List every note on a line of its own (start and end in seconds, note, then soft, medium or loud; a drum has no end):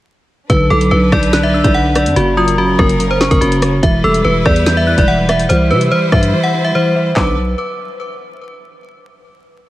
0.50 0.70 B1 loud
0.50 0.90 D3 loud
0.50 3.80 F#3 medium
0.50 2.15 D4 medium
0.50 2.15 B4 medium
0.50 0.66 B4 medium
0.50 kick loud
0.50 closed hi-hat medium
0.70 0.91 B1 loud
0.70 1.75 F#3 medium
0.70 0.87 A4 medium
0.70 1.29 D6 medium
0.81 closed hi-hat medium
0.91 1.11 B1 loud
0.91 1.32 D3 medium
0.91 1.07 B4 medium
1.12 1.62 B1 loud
1.12 1.42 D5 medium
1.12 kick medium
1.12 cross-stick loud
1.23 closed hi-hat medium
1.33 1.74 D3 loud
1.33 1.53 F#6 medium
1.33 snare loud
1.33 closed hi-hat medium
1.43 1.60 E5 medium
1.54 2.16 D4 medium
1.54 1.74 E6 medium
1.64 2.08 B1 loud
1.64 1.72 D5 medium
1.64 kick loud
1.64 closed hi-hat medium
1.74 2.16 D3 medium
1.74 1.91 F#5 medium
1.95 2.12 D5 medium
1.95 2.16 D5 medium
1.95 cross-stick loud
1.95 closed hi-hat medium
2.06 2.16 F#2 loud
2.06 closed hi-hat medium
2.16 2.76 F#1 loud
2.16 2.57 C#3 medium
2.16 3.81 C#4 medium
2.16 2.33 F#4 medium
2.16 3.81 A#4 medium
2.16 closed hi-hat medium
2.37 3.41 F#3 medium
2.37 2.53 F4 medium
2.37 3.17 D#6 medium
2.48 closed hi-hat medium
2.58 2.99 C#3 medium
2.58 2.74 F#4 medium
2.79 3.29 F#1 loud
2.79 3.08 A#4 medium
2.79 kick medium
2.79 cross-stick loud
2.89 closed hi-hat medium
3.00 3.40 C#3 medium
3.00 closed hi-hat medium
3.11 3.27 C5 medium
3.21 3.83 C#4 medium
3.21 3.40 C#6 medium
3.21 snare loud
3.31 3.41 F#1 loud
3.31 3.39 A#4 medium
3.31 kick loud
3.31 closed hi-hat medium
3.41 3.81 F#1 loud
3.41 3.83 C#3 medium
3.41 3.80 F#4 medium
3.41 closed hi-hat medium
3.52 closed hi-hat medium
3.62 3.83 C#5 loud
3.62 cross-stick loud
3.62 closed hi-hat medium
3.83 4.03 E1 loud
3.83 4.24 E3 medium
3.83 7.13 G3 medium
3.83 5.48 E4 medium
3.83 5.48 B4 loud
3.83 3.99 E5 medium
3.83 kick loud
3.83 closed hi-hat medium
4.04 4.24 E1 loud
4.04 5.08 G3 medium
4.04 4.20 A4 medium
4.04 4.63 E6 medium
4.14 closed hi-hat medium
4.25 4.45 E1 loud
4.25 4.65 E3 medium
4.25 4.41 B4 medium
4.46 4.96 E2 loud
4.46 4.75 D5 medium
4.46 kick medium
4.46 cross-stick loud
4.56 closed hi-hat medium
4.66 5.07 E3 medium
4.66 4.86 G6 medium
4.66 snare loud
4.66 closed hi-hat medium
4.77 4.93 E5 medium
4.87 5.29 E4 medium
4.87 5.07 F#6 medium
4.98 5.48 E1 loud
4.98 5.06 D5 medium
4.98 kick loud
4.98 closed hi-hat medium
5.08 5.49 E3 medium
5.08 5.24 F#5 medium
5.29 5.50 E5 medium
5.29 5.45 E5 medium
5.29 cross-stick loud
5.29 closed hi-hat medium
5.39 closed hi-hat medium
5.49 5.72 C2 loud
5.49 5.90 E3 loud
5.49 7.15 E4 medium
5.49 5.66 C5 medium
5.49 7.15 C5 loud
5.49 closed hi-hat medium
5.71 5.90 C3 loud
5.71 6.75 G3 medium
5.71 5.87 B4 medium
5.71 7.12 E6 medium
5.81 closed hi-hat medium
5.92 6.32 E3 medium
5.92 6.08 C5 medium
6.12 6.33 G2 loud
6.12 6.42 E5 medium
6.12 kick medium
6.12 cross-stick loud
6.23 closed hi-hat medium
6.33 6.74 E3 medium
6.43 6.60 F#5 medium
6.54 6.95 E4 medium
6.64 6.73 E5 medium
6.75 7.16 E3 medium
6.75 7.14 C5 medium
6.96 7.16 E5 medium
7.16 7.55 B1 loud
7.16 7.36 D3 medium
7.16 7.36 F#3 medium
7.16 7.36 B3 medium
7.16 7.36 D4 medium
7.16 7.36 B4 medium
7.16 7.36 D6 medium
7.16 kick loud
7.16 clap medium